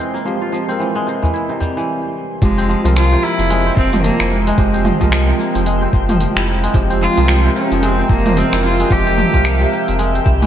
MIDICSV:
0, 0, Header, 1, 9, 480
1, 0, Start_track
1, 0, Key_signature, -4, "minor"
1, 0, Tempo, 540541
1, 230, Time_signature, 4, 2, 24, 8
1, 9293, End_track
2, 0, Start_track
2, 0, Title_t, "Ambient pad"
2, 0, Program_c, 0, 92
2, 0, Note_on_c, 0, 56, 73
2, 0, Note_on_c, 0, 72, 68
2, 1635, Note_off_c, 0, 56, 0
2, 1638, Note_off_c, 0, 72, 0
2, 2158, Note_on_c, 0, 72, 73
2, 2160, Note_on_c, 0, 56, 78
2, 2165, Note_on_c, 0, 79, 96
2, 5959, Note_off_c, 0, 72, 0
2, 6002, Note_on_c, 0, 70, 75
2, 9293, Note_off_c, 0, 56, 0
2, 9293, Note_off_c, 0, 70, 0
2, 9293, Note_off_c, 0, 79, 0
2, 9293, End_track
3, 0, Start_track
3, 0, Title_t, "Synth texture"
3, 0, Program_c, 1, 99
3, 0, Note_on_c, 1, 60, 85
3, 0, Note_on_c, 1, 72, 84
3, 1669, Note_off_c, 1, 72, 0
3, 1670, Note_off_c, 1, 60, 0
3, 2150, Note_on_c, 1, 67, 95
3, 2150, Note_on_c, 1, 76, 88
3, 9293, Note_off_c, 1, 67, 0
3, 9293, Note_off_c, 1, 76, 0
3, 9293, End_track
4, 0, Start_track
4, 0, Title_t, "Cello"
4, 0, Program_c, 2, 42
4, 2148, Note_on_c, 2, 56, 98
4, 2595, Note_off_c, 2, 56, 0
4, 2622, Note_on_c, 2, 65, 108
4, 2872, Note_on_c, 2, 64, 111
4, 2885, Note_off_c, 2, 65, 0
4, 3348, Note_off_c, 2, 64, 0
4, 3354, Note_on_c, 2, 60, 94
4, 3575, Note_off_c, 2, 60, 0
4, 3581, Note_on_c, 2, 58, 101
4, 3831, Note_on_c, 2, 56, 93
4, 3845, Note_off_c, 2, 58, 0
4, 5750, Note_off_c, 2, 56, 0
4, 6235, Note_on_c, 2, 65, 99
4, 6679, Note_off_c, 2, 65, 0
4, 6717, Note_on_c, 2, 61, 86
4, 6957, Note_on_c, 2, 60, 96
4, 6970, Note_off_c, 2, 61, 0
4, 7191, Note_off_c, 2, 60, 0
4, 7197, Note_on_c, 2, 58, 90
4, 7440, Note_on_c, 2, 60, 99
4, 7453, Note_off_c, 2, 58, 0
4, 7675, Note_off_c, 2, 60, 0
4, 7680, Note_on_c, 2, 65, 102
4, 7917, Note_on_c, 2, 67, 109
4, 7931, Note_off_c, 2, 65, 0
4, 8633, Note_off_c, 2, 67, 0
4, 9293, End_track
5, 0, Start_track
5, 0, Title_t, "Tine electric piano"
5, 0, Program_c, 3, 4
5, 0, Control_c, 3, 64, 127
5, 0, Note_on_c, 3, 56, 82
5, 0, Note_on_c, 3, 60, 72
5, 0, Note_on_c, 3, 65, 68
5, 0, Note_on_c, 3, 67, 78
5, 0, Note_on_c, 3, 70, 88
5, 196, Note_off_c, 3, 56, 0
5, 201, Note_off_c, 3, 60, 0
5, 214, Note_off_c, 3, 70, 0
5, 223, Note_on_c, 3, 56, 78
5, 228, Note_on_c, 3, 60, 71
5, 236, Note_on_c, 3, 77, 66
5, 241, Note_off_c, 3, 67, 0
5, 241, Note_on_c, 3, 67, 77
5, 575, Note_off_c, 3, 56, 0
5, 578, Note_off_c, 3, 60, 0
5, 581, Note_off_c, 3, 77, 0
5, 584, Note_off_c, 3, 67, 0
5, 601, Note_on_c, 3, 56, 83
5, 612, Note_on_c, 3, 60, 77
5, 636, Note_on_c, 3, 70, 84
5, 1664, Note_off_c, 3, 56, 0
5, 1670, Note_off_c, 3, 60, 0
5, 1682, Note_off_c, 3, 70, 0
5, 2143, Note_on_c, 3, 56, 86
5, 2148, Note_on_c, 3, 60, 73
5, 2156, Note_off_c, 3, 65, 0
5, 2156, Note_on_c, 3, 65, 73
5, 2160, Note_on_c, 3, 67, 91
5, 2163, Control_c, 3, 64, 0
5, 2330, Control_c, 3, 64, 127
5, 2495, Note_off_c, 3, 56, 0
5, 2497, Note_off_c, 3, 60, 0
5, 2501, Note_off_c, 3, 65, 0
5, 2503, Note_off_c, 3, 67, 0
5, 2520, Note_on_c, 3, 56, 87
5, 2530, Note_on_c, 3, 60, 85
5, 2542, Note_on_c, 3, 53, 79
5, 2554, Note_on_c, 3, 70, 96
5, 4040, Note_off_c, 3, 56, 0
5, 4045, Note_off_c, 3, 60, 0
5, 4051, Note_off_c, 3, 53, 0
5, 4057, Note_off_c, 3, 70, 0
5, 4060, Note_on_c, 3, 56, 78
5, 4065, Note_on_c, 3, 60, 79
5, 4072, Note_on_c, 3, 53, 71
5, 4079, Note_on_c, 3, 67, 95
5, 4413, Note_off_c, 3, 56, 0
5, 4416, Note_off_c, 3, 60, 0
5, 4419, Note_off_c, 3, 53, 0
5, 4423, Note_off_c, 3, 67, 0
5, 4435, Note_on_c, 3, 56, 91
5, 4447, Note_on_c, 3, 60, 80
5, 4461, Note_on_c, 3, 65, 76
5, 4471, Note_on_c, 3, 70, 97
5, 5958, Note_off_c, 3, 56, 0
5, 5964, Note_off_c, 3, 60, 0
5, 5971, Note_off_c, 3, 65, 0
5, 5976, Note_off_c, 3, 70, 0
5, 5978, Note_on_c, 3, 56, 91
5, 5983, Note_on_c, 3, 60, 82
5, 5990, Note_on_c, 3, 53, 76
5, 5995, Note_on_c, 3, 67, 92
5, 6332, Note_off_c, 3, 56, 0
5, 6335, Note_off_c, 3, 60, 0
5, 6338, Note_off_c, 3, 53, 0
5, 6341, Note_off_c, 3, 67, 0
5, 6356, Note_on_c, 3, 56, 86
5, 6368, Note_on_c, 3, 60, 84
5, 6380, Note_on_c, 3, 65, 83
5, 6392, Note_on_c, 3, 70, 93
5, 7878, Note_off_c, 3, 56, 0
5, 7884, Note_off_c, 3, 60, 0
5, 7890, Note_off_c, 3, 65, 0
5, 7896, Note_off_c, 3, 70, 0
5, 7904, Note_on_c, 3, 56, 86
5, 7909, Note_on_c, 3, 60, 76
5, 7915, Note_on_c, 3, 53, 75
5, 7920, Note_on_c, 3, 67, 90
5, 8255, Note_off_c, 3, 56, 0
5, 8258, Note_off_c, 3, 60, 0
5, 8261, Note_off_c, 3, 53, 0
5, 8263, Note_off_c, 3, 67, 0
5, 8288, Note_on_c, 3, 60, 80
5, 8299, Note_on_c, 3, 77, 86
5, 8312, Note_on_c, 3, 70, 102
5, 9293, Note_off_c, 3, 60, 0
5, 9293, Note_off_c, 3, 70, 0
5, 9293, Note_off_c, 3, 77, 0
5, 9293, End_track
6, 0, Start_track
6, 0, Title_t, "Kora"
6, 0, Program_c, 4, 46
6, 0, Note_on_c, 4, 48, 71
6, 0, Note_on_c, 4, 52, 72
6, 0, Note_on_c, 4, 56, 69
6, 0, Note_on_c, 4, 60, 71
6, 0, Note_on_c, 4, 64, 77
6, 125, Note_on_c, 4, 58, 69
6, 225, Note_on_c, 4, 53, 71
6, 279, Note_off_c, 4, 64, 0
6, 368, Note_on_c, 4, 65, 70
6, 455, Note_off_c, 4, 53, 0
6, 466, Note_on_c, 4, 53, 73
6, 606, Note_off_c, 4, 60, 0
6, 609, Note_on_c, 4, 60, 90
6, 693, Note_off_c, 4, 52, 0
6, 704, Note_on_c, 4, 52, 76
6, 757, Note_off_c, 4, 65, 0
6, 836, Note_off_c, 4, 56, 0
6, 847, Note_on_c, 4, 56, 97
6, 936, Note_off_c, 4, 48, 0
6, 947, Note_on_c, 4, 48, 73
6, 994, Note_off_c, 4, 52, 0
6, 994, Note_off_c, 4, 53, 0
6, 1088, Note_on_c, 4, 52, 70
6, 1187, Note_on_c, 4, 64, 77
6, 1316, Note_off_c, 4, 48, 0
6, 1327, Note_on_c, 4, 48, 69
6, 1354, Note_off_c, 4, 52, 0
6, 1424, Note_on_c, 4, 55, 90
6, 1572, Note_on_c, 4, 52, 89
6, 1838, Note_off_c, 4, 58, 0
6, 2149, Note_on_c, 4, 53, 86
6, 2194, Note_off_c, 4, 48, 0
6, 2194, Note_off_c, 4, 52, 0
6, 2194, Note_off_c, 4, 55, 0
6, 2194, Note_off_c, 4, 56, 0
6, 2202, Note_off_c, 4, 64, 0
6, 2208, Note_off_c, 4, 60, 0
6, 2290, Note_on_c, 4, 60, 97
6, 2379, Note_off_c, 4, 53, 0
6, 2390, Note_on_c, 4, 53, 82
6, 2520, Note_off_c, 4, 53, 0
6, 2531, Note_on_c, 4, 53, 105
6, 2620, Note_off_c, 4, 53, 0
6, 2631, Note_on_c, 4, 53, 82
6, 2775, Note_on_c, 4, 48, 76
6, 2794, Note_off_c, 4, 53, 0
6, 2872, Note_on_c, 4, 58, 74
6, 3014, Note_on_c, 4, 53, 76
6, 3110, Note_on_c, 4, 56, 103
6, 3248, Note_off_c, 4, 60, 0
6, 3252, Note_on_c, 4, 60, 74
6, 3338, Note_off_c, 4, 53, 0
6, 3349, Note_on_c, 4, 53, 73
6, 3479, Note_off_c, 4, 53, 0
6, 3490, Note_on_c, 4, 53, 97
6, 3576, Note_off_c, 4, 53, 0
6, 3586, Note_on_c, 4, 53, 82
6, 3732, Note_on_c, 4, 64, 73
6, 3825, Note_off_c, 4, 58, 0
6, 3828, Note_on_c, 4, 58, 79
6, 3960, Note_off_c, 4, 56, 0
6, 3971, Note_on_c, 4, 56, 103
6, 4055, Note_off_c, 4, 53, 0
6, 4066, Note_on_c, 4, 53, 86
6, 4119, Note_off_c, 4, 64, 0
6, 4202, Note_off_c, 4, 60, 0
6, 4206, Note_on_c, 4, 60, 100
6, 4294, Note_off_c, 4, 53, 0
6, 4305, Note_on_c, 4, 53, 84
6, 4436, Note_off_c, 4, 53, 0
6, 4446, Note_on_c, 4, 53, 108
6, 4535, Note_off_c, 4, 53, 0
6, 4546, Note_on_c, 4, 53, 82
6, 4675, Note_off_c, 4, 48, 0
6, 4685, Note_on_c, 4, 48, 77
6, 4714, Note_off_c, 4, 53, 0
6, 4784, Note_off_c, 4, 58, 0
6, 4788, Note_on_c, 4, 58, 76
6, 4930, Note_on_c, 4, 53, 82
6, 5018, Note_off_c, 4, 56, 0
6, 5029, Note_on_c, 4, 56, 102
6, 5165, Note_off_c, 4, 60, 0
6, 5169, Note_on_c, 4, 60, 82
6, 5260, Note_off_c, 4, 53, 0
6, 5271, Note_on_c, 4, 53, 74
6, 5404, Note_off_c, 4, 53, 0
6, 5414, Note_on_c, 4, 53, 106
6, 5500, Note_off_c, 4, 53, 0
6, 5511, Note_on_c, 4, 53, 82
6, 5652, Note_on_c, 4, 64, 78
6, 5746, Note_off_c, 4, 58, 0
6, 5749, Note_on_c, 4, 58, 76
6, 5880, Note_off_c, 4, 56, 0
6, 5891, Note_on_c, 4, 56, 97
6, 5979, Note_off_c, 4, 53, 0
6, 5989, Note_on_c, 4, 53, 83
6, 6042, Note_off_c, 4, 64, 0
6, 6126, Note_off_c, 4, 60, 0
6, 6129, Note_on_c, 4, 60, 106
6, 6217, Note_off_c, 4, 53, 0
6, 6227, Note_on_c, 4, 53, 80
6, 6358, Note_off_c, 4, 53, 0
6, 6369, Note_on_c, 4, 53, 111
6, 6458, Note_off_c, 4, 53, 0
6, 6468, Note_on_c, 4, 53, 86
6, 6604, Note_off_c, 4, 48, 0
6, 6615, Note_on_c, 4, 48, 79
6, 6634, Note_off_c, 4, 53, 0
6, 6708, Note_off_c, 4, 58, 0
6, 6711, Note_on_c, 4, 58, 84
6, 6858, Note_on_c, 4, 53, 80
6, 6940, Note_off_c, 4, 56, 0
6, 6951, Note_on_c, 4, 56, 105
6, 7089, Note_off_c, 4, 60, 0
6, 7092, Note_on_c, 4, 60, 84
6, 7178, Note_off_c, 4, 53, 0
6, 7189, Note_on_c, 4, 53, 74
6, 7321, Note_off_c, 4, 53, 0
6, 7331, Note_on_c, 4, 53, 103
6, 7416, Note_off_c, 4, 53, 0
6, 7427, Note_on_c, 4, 53, 78
6, 7571, Note_on_c, 4, 64, 74
6, 7665, Note_off_c, 4, 58, 0
6, 7668, Note_on_c, 4, 58, 79
6, 7805, Note_off_c, 4, 56, 0
6, 7815, Note_on_c, 4, 56, 100
6, 7895, Note_off_c, 4, 53, 0
6, 7906, Note_on_c, 4, 53, 85
6, 7959, Note_off_c, 4, 64, 0
6, 8046, Note_off_c, 4, 60, 0
6, 8050, Note_on_c, 4, 60, 100
6, 8136, Note_off_c, 4, 53, 0
6, 8147, Note_on_c, 4, 53, 81
6, 8279, Note_off_c, 4, 53, 0
6, 8289, Note_on_c, 4, 53, 100
6, 8380, Note_off_c, 4, 53, 0
6, 8391, Note_on_c, 4, 53, 82
6, 8524, Note_off_c, 4, 48, 0
6, 8534, Note_on_c, 4, 48, 78
6, 8554, Note_off_c, 4, 53, 0
6, 8627, Note_off_c, 4, 58, 0
6, 8630, Note_on_c, 4, 58, 78
6, 8771, Note_on_c, 4, 53, 78
6, 8859, Note_off_c, 4, 56, 0
6, 8869, Note_on_c, 4, 56, 105
6, 9010, Note_off_c, 4, 60, 0
6, 9013, Note_on_c, 4, 60, 82
6, 9112, Note_on_c, 4, 55, 94
6, 9255, Note_on_c, 4, 52, 104
6, 9293, Note_off_c, 4, 48, 0
6, 9293, Note_off_c, 4, 52, 0
6, 9293, Note_off_c, 4, 53, 0
6, 9293, Note_off_c, 4, 55, 0
6, 9293, Note_off_c, 4, 56, 0
6, 9293, Note_off_c, 4, 58, 0
6, 9293, Note_off_c, 4, 60, 0
6, 9293, End_track
7, 0, Start_track
7, 0, Title_t, "Sub bass"
7, 0, Program_c, 5, 38
7, 2148, Note_on_c, 5, 29, 97
7, 2445, Note_off_c, 5, 29, 0
7, 2529, Note_on_c, 5, 36, 92
7, 2810, Note_off_c, 5, 36, 0
7, 3009, Note_on_c, 5, 29, 81
7, 3289, Note_off_c, 5, 29, 0
7, 3350, Note_on_c, 5, 29, 101
7, 3646, Note_off_c, 5, 29, 0
7, 3732, Note_on_c, 5, 29, 83
7, 4011, Note_off_c, 5, 29, 0
7, 4068, Note_on_c, 5, 29, 98
7, 4366, Note_off_c, 5, 29, 0
7, 4449, Note_on_c, 5, 36, 91
7, 4729, Note_off_c, 5, 36, 0
7, 4932, Note_on_c, 5, 29, 78
7, 5211, Note_off_c, 5, 29, 0
7, 5268, Note_on_c, 5, 29, 100
7, 5565, Note_off_c, 5, 29, 0
7, 5651, Note_on_c, 5, 29, 86
7, 5930, Note_off_c, 5, 29, 0
7, 5989, Note_on_c, 5, 29, 99
7, 6286, Note_off_c, 5, 29, 0
7, 6372, Note_on_c, 5, 36, 89
7, 6651, Note_off_c, 5, 36, 0
7, 6853, Note_on_c, 5, 29, 81
7, 7131, Note_off_c, 5, 29, 0
7, 7190, Note_on_c, 5, 29, 99
7, 7486, Note_off_c, 5, 29, 0
7, 7574, Note_on_c, 5, 29, 89
7, 7852, Note_off_c, 5, 29, 0
7, 7909, Note_on_c, 5, 29, 101
7, 8206, Note_off_c, 5, 29, 0
7, 8293, Note_on_c, 5, 36, 85
7, 8571, Note_off_c, 5, 36, 0
7, 8781, Note_on_c, 5, 29, 78
7, 9055, Note_off_c, 5, 29, 0
7, 9111, Note_on_c, 5, 36, 103
7, 9293, Note_off_c, 5, 36, 0
7, 9293, End_track
8, 0, Start_track
8, 0, Title_t, "Udu"
8, 1095, Note_on_c, 9, 64, 85
8, 1184, Note_off_c, 9, 64, 0
8, 1431, Note_on_c, 9, 64, 79
8, 1519, Note_off_c, 9, 64, 0
8, 9293, End_track
9, 0, Start_track
9, 0, Title_t, "Drums"
9, 0, Note_on_c, 9, 69, 70
9, 87, Note_off_c, 9, 69, 0
9, 143, Note_on_c, 9, 69, 43
9, 232, Note_off_c, 9, 69, 0
9, 242, Note_on_c, 9, 69, 30
9, 330, Note_off_c, 9, 69, 0
9, 481, Note_on_c, 9, 69, 74
9, 570, Note_off_c, 9, 69, 0
9, 623, Note_on_c, 9, 69, 42
9, 712, Note_off_c, 9, 69, 0
9, 721, Note_on_c, 9, 69, 31
9, 810, Note_off_c, 9, 69, 0
9, 961, Note_on_c, 9, 69, 76
9, 1050, Note_off_c, 9, 69, 0
9, 1105, Note_on_c, 9, 69, 42
9, 1193, Note_off_c, 9, 69, 0
9, 1202, Note_on_c, 9, 69, 32
9, 1290, Note_off_c, 9, 69, 0
9, 1442, Note_on_c, 9, 69, 74
9, 1531, Note_off_c, 9, 69, 0
9, 1587, Note_on_c, 9, 69, 44
9, 1676, Note_off_c, 9, 69, 0
9, 2147, Note_on_c, 9, 36, 106
9, 2152, Note_on_c, 9, 46, 57
9, 2160, Note_on_c, 9, 69, 30
9, 2236, Note_off_c, 9, 36, 0
9, 2240, Note_off_c, 9, 46, 0
9, 2248, Note_off_c, 9, 69, 0
9, 2295, Note_on_c, 9, 46, 31
9, 2383, Note_off_c, 9, 46, 0
9, 2399, Note_on_c, 9, 69, 81
9, 2488, Note_off_c, 9, 69, 0
9, 2535, Note_on_c, 9, 46, 47
9, 2543, Note_on_c, 9, 69, 44
9, 2624, Note_off_c, 9, 46, 0
9, 2632, Note_off_c, 9, 69, 0
9, 2633, Note_on_c, 9, 26, 80
9, 2633, Note_on_c, 9, 46, 60
9, 2641, Note_on_c, 9, 69, 34
9, 2722, Note_off_c, 9, 26, 0
9, 2722, Note_off_c, 9, 46, 0
9, 2730, Note_off_c, 9, 69, 0
9, 2878, Note_on_c, 9, 69, 77
9, 2967, Note_off_c, 9, 69, 0
9, 3012, Note_on_c, 9, 46, 44
9, 3020, Note_on_c, 9, 69, 45
9, 3101, Note_off_c, 9, 46, 0
9, 3109, Note_off_c, 9, 69, 0
9, 3110, Note_on_c, 9, 46, 56
9, 3118, Note_on_c, 9, 69, 31
9, 3198, Note_off_c, 9, 46, 0
9, 3207, Note_off_c, 9, 69, 0
9, 3347, Note_on_c, 9, 36, 108
9, 3356, Note_on_c, 9, 69, 80
9, 3436, Note_off_c, 9, 36, 0
9, 3445, Note_off_c, 9, 69, 0
9, 3491, Note_on_c, 9, 45, 75
9, 3491, Note_on_c, 9, 46, 46
9, 3499, Note_on_c, 9, 69, 42
9, 3580, Note_off_c, 9, 45, 0
9, 3580, Note_off_c, 9, 46, 0
9, 3588, Note_off_c, 9, 69, 0
9, 3589, Note_on_c, 9, 46, 60
9, 3597, Note_on_c, 9, 69, 35
9, 3678, Note_off_c, 9, 46, 0
9, 3686, Note_off_c, 9, 69, 0
9, 3730, Note_on_c, 9, 26, 81
9, 3730, Note_on_c, 9, 46, 33
9, 3819, Note_off_c, 9, 26, 0
9, 3819, Note_off_c, 9, 46, 0
9, 3835, Note_on_c, 9, 69, 74
9, 3924, Note_off_c, 9, 69, 0
9, 3970, Note_on_c, 9, 46, 47
9, 3978, Note_on_c, 9, 69, 42
9, 4059, Note_off_c, 9, 46, 0
9, 4066, Note_on_c, 9, 36, 124
9, 4067, Note_off_c, 9, 69, 0
9, 4067, Note_on_c, 9, 46, 53
9, 4075, Note_on_c, 9, 69, 33
9, 4155, Note_off_c, 9, 36, 0
9, 4155, Note_off_c, 9, 46, 0
9, 4163, Note_off_c, 9, 69, 0
9, 4210, Note_on_c, 9, 46, 28
9, 4299, Note_off_c, 9, 46, 0
9, 4307, Note_on_c, 9, 45, 60
9, 4315, Note_on_c, 9, 69, 90
9, 4395, Note_off_c, 9, 45, 0
9, 4403, Note_off_c, 9, 69, 0
9, 4449, Note_on_c, 9, 36, 61
9, 4451, Note_on_c, 9, 46, 47
9, 4459, Note_on_c, 9, 69, 49
9, 4538, Note_off_c, 9, 36, 0
9, 4540, Note_off_c, 9, 46, 0
9, 4547, Note_on_c, 9, 26, 89
9, 4547, Note_on_c, 9, 46, 55
9, 4548, Note_off_c, 9, 69, 0
9, 4556, Note_on_c, 9, 69, 36
9, 4636, Note_off_c, 9, 26, 0
9, 4636, Note_off_c, 9, 46, 0
9, 4644, Note_off_c, 9, 69, 0
9, 4797, Note_on_c, 9, 69, 82
9, 4886, Note_off_c, 9, 69, 0
9, 4931, Note_on_c, 9, 46, 47
9, 4939, Note_on_c, 9, 69, 49
9, 5020, Note_off_c, 9, 46, 0
9, 5027, Note_on_c, 9, 46, 53
9, 5028, Note_off_c, 9, 69, 0
9, 5035, Note_on_c, 9, 69, 34
9, 5116, Note_off_c, 9, 46, 0
9, 5124, Note_off_c, 9, 69, 0
9, 5267, Note_on_c, 9, 36, 104
9, 5275, Note_on_c, 9, 69, 78
9, 5355, Note_off_c, 9, 36, 0
9, 5363, Note_off_c, 9, 69, 0
9, 5409, Note_on_c, 9, 45, 79
9, 5409, Note_on_c, 9, 46, 44
9, 5417, Note_on_c, 9, 69, 46
9, 5498, Note_off_c, 9, 45, 0
9, 5498, Note_off_c, 9, 46, 0
9, 5506, Note_off_c, 9, 69, 0
9, 5509, Note_on_c, 9, 46, 58
9, 5517, Note_on_c, 9, 69, 35
9, 5597, Note_off_c, 9, 46, 0
9, 5605, Note_off_c, 9, 69, 0
9, 5654, Note_on_c, 9, 26, 85
9, 5654, Note_on_c, 9, 46, 32
9, 5742, Note_off_c, 9, 26, 0
9, 5742, Note_off_c, 9, 46, 0
9, 5757, Note_on_c, 9, 69, 78
9, 5845, Note_off_c, 9, 69, 0
9, 5893, Note_on_c, 9, 46, 49
9, 5901, Note_on_c, 9, 69, 46
9, 5981, Note_off_c, 9, 46, 0
9, 5987, Note_on_c, 9, 36, 123
9, 5990, Note_off_c, 9, 69, 0
9, 5991, Note_on_c, 9, 46, 53
9, 5999, Note_on_c, 9, 69, 37
9, 6076, Note_off_c, 9, 36, 0
9, 6080, Note_off_c, 9, 46, 0
9, 6088, Note_off_c, 9, 69, 0
9, 6132, Note_on_c, 9, 46, 30
9, 6221, Note_off_c, 9, 46, 0
9, 6237, Note_on_c, 9, 69, 85
9, 6326, Note_off_c, 9, 69, 0
9, 6372, Note_on_c, 9, 46, 47
9, 6380, Note_on_c, 9, 69, 49
9, 6461, Note_off_c, 9, 46, 0
9, 6467, Note_on_c, 9, 26, 83
9, 6467, Note_on_c, 9, 46, 54
9, 6469, Note_off_c, 9, 69, 0
9, 6476, Note_on_c, 9, 69, 34
9, 6556, Note_off_c, 9, 26, 0
9, 6556, Note_off_c, 9, 46, 0
9, 6564, Note_off_c, 9, 69, 0
9, 6717, Note_on_c, 9, 69, 82
9, 6806, Note_off_c, 9, 69, 0
9, 6854, Note_on_c, 9, 46, 43
9, 6862, Note_on_c, 9, 69, 47
9, 6943, Note_off_c, 9, 46, 0
9, 6951, Note_off_c, 9, 69, 0
9, 6951, Note_on_c, 9, 46, 56
9, 6959, Note_on_c, 9, 69, 35
9, 7039, Note_off_c, 9, 46, 0
9, 7047, Note_off_c, 9, 69, 0
9, 7188, Note_on_c, 9, 36, 115
9, 7197, Note_on_c, 9, 69, 84
9, 7277, Note_off_c, 9, 36, 0
9, 7286, Note_off_c, 9, 69, 0
9, 7334, Note_on_c, 9, 45, 76
9, 7334, Note_on_c, 9, 46, 45
9, 7342, Note_on_c, 9, 69, 49
9, 7423, Note_off_c, 9, 45, 0
9, 7423, Note_off_c, 9, 46, 0
9, 7431, Note_off_c, 9, 69, 0
9, 7431, Note_on_c, 9, 46, 54
9, 7440, Note_on_c, 9, 69, 36
9, 7520, Note_off_c, 9, 46, 0
9, 7528, Note_off_c, 9, 69, 0
9, 7575, Note_on_c, 9, 26, 86
9, 7575, Note_on_c, 9, 46, 30
9, 7663, Note_off_c, 9, 26, 0
9, 7663, Note_off_c, 9, 46, 0
9, 7679, Note_on_c, 9, 69, 82
9, 7768, Note_off_c, 9, 69, 0
9, 7813, Note_on_c, 9, 46, 44
9, 7821, Note_on_c, 9, 69, 48
9, 7902, Note_off_c, 9, 46, 0
9, 7908, Note_on_c, 9, 36, 114
9, 7909, Note_on_c, 9, 46, 51
9, 7910, Note_off_c, 9, 69, 0
9, 7917, Note_on_c, 9, 69, 34
9, 7997, Note_off_c, 9, 36, 0
9, 7998, Note_off_c, 9, 46, 0
9, 8006, Note_off_c, 9, 69, 0
9, 8053, Note_on_c, 9, 46, 28
9, 8142, Note_off_c, 9, 46, 0
9, 8150, Note_on_c, 9, 45, 62
9, 8158, Note_on_c, 9, 69, 84
9, 8239, Note_off_c, 9, 45, 0
9, 8247, Note_off_c, 9, 69, 0
9, 8291, Note_on_c, 9, 36, 64
9, 8294, Note_on_c, 9, 46, 43
9, 8302, Note_on_c, 9, 69, 47
9, 8380, Note_off_c, 9, 36, 0
9, 8383, Note_off_c, 9, 46, 0
9, 8391, Note_off_c, 9, 69, 0
9, 8391, Note_on_c, 9, 26, 79
9, 8391, Note_on_c, 9, 46, 52
9, 8399, Note_on_c, 9, 69, 35
9, 8479, Note_off_c, 9, 26, 0
9, 8479, Note_off_c, 9, 46, 0
9, 8487, Note_off_c, 9, 69, 0
9, 8638, Note_on_c, 9, 69, 81
9, 8727, Note_off_c, 9, 69, 0
9, 8775, Note_on_c, 9, 46, 43
9, 8783, Note_on_c, 9, 69, 49
9, 8864, Note_off_c, 9, 46, 0
9, 8872, Note_off_c, 9, 69, 0
9, 8872, Note_on_c, 9, 46, 51
9, 8880, Note_on_c, 9, 69, 35
9, 8961, Note_off_c, 9, 46, 0
9, 8969, Note_off_c, 9, 69, 0
9, 9016, Note_on_c, 9, 46, 29
9, 9105, Note_off_c, 9, 46, 0
9, 9110, Note_on_c, 9, 36, 113
9, 9119, Note_on_c, 9, 69, 86
9, 9199, Note_off_c, 9, 36, 0
9, 9208, Note_off_c, 9, 69, 0
9, 9256, Note_on_c, 9, 45, 82
9, 9256, Note_on_c, 9, 46, 42
9, 9264, Note_on_c, 9, 69, 44
9, 9293, Note_off_c, 9, 45, 0
9, 9293, Note_off_c, 9, 46, 0
9, 9293, Note_off_c, 9, 69, 0
9, 9293, End_track
0, 0, End_of_file